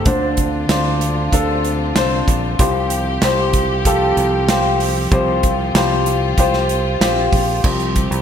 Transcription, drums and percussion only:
0.05 kick loud
0.05 closed hi-hat medium
0.37 kick medium
0.37 closed hi-hat medium
0.69 snare medium
0.69 closed hi-hat medium
1.01 closed hi-hat medium
1.32 kick medium
1.32 closed hi-hat medium
1.64 closed hi-hat medium
1.96 snare medium
1.96 closed hi-hat medium
2.28 kick medium
2.28 closed hi-hat medium
2.59 kick loud
2.59 closed hi-hat medium
2.90 closed hi-hat medium
3.22 snare medium
3.22 closed hi-hat medium
3.53 kick medium
3.53 closed hi-hat medium
3.85 kick medium
3.85 closed hi-hat medium
4.17 closed hi-hat medium
4.49 snare loud
4.49 closed hi-hat medium
4.80 open hi-hat medium
5.12 kick loud
5.12 closed hi-hat medium
5.43 kick medium
5.43 closed hi-hat medium
5.75 snare loud
5.75 closed hi-hat medium
6.06 closed hi-hat medium
6.38 kick medium
6.38 closed hi-hat medium
6.54 snare soft
6.69 closed hi-hat medium
7.01 snare medium
7.01 closed hi-hat medium
7.33 kick medium
7.33 open hi-hat medium
7.64 kick loud
7.64 crash medium
7.80 closed hi-hat soft
7.96 kick medium
7.96 closed hi-hat medium
8.12 closed hi-hat soft

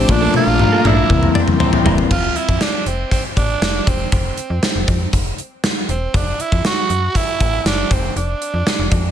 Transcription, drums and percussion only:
0.09 kick loud
0.09 high tom medium
0.34 high tom medium
0.59 mid tom medium
0.85 mid tom medium
1.10 kick medium
1.10 mid tom medium
1.23 mid tom medium
1.35 mid tom medium
1.48 mid tom medium
1.60 floor tom loud
1.73 floor tom medium
1.86 floor tom loud
1.98 floor tom medium
2.11 kick medium
2.11 crash medium
2.36 closed hi-hat medium
2.49 kick medium
2.61 snare loud
2.61 closed hi-hat medium
2.86 closed hi-hat medium
3.11 kick medium
3.11 closed hi-hat medium
3.37 kick medium
3.37 closed hi-hat medium
3.62 snare loud
3.62 closed hi-hat medium
3.87 kick medium
3.87 closed hi-hat medium
4.12 kick medium
4.12 closed hi-hat medium
4.38 closed hi-hat medium
4.63 snare loud
4.63 closed hi-hat medium
4.88 kick medium
4.88 closed hi-hat medium
5.13 kick medium
5.13 closed hi-hat medium
5.38 closed hi-hat medium
5.64 snare loud
5.64 closed hi-hat medium
5.89 closed hi-hat medium
6.14 kick medium
6.14 closed hi-hat medium
6.40 closed hi-hat medium
6.52 kick medium
6.65 snare loud
6.65 closed hi-hat medium
6.90 closed hi-hat medium
7.15 kick medium
7.15 closed hi-hat medium
7.41 kick medium
7.41 closed hi-hat medium
7.66 snare loud
7.66 closed hi-hat medium
7.91 kick medium
7.91 closed hi-hat medium
8.17 closed hi-hat medium
8.42 closed hi-hat medium
8.67 snare loud
8.67 closed hi-hat medium
8.91 kick medium
8.91 closed hi-hat medium

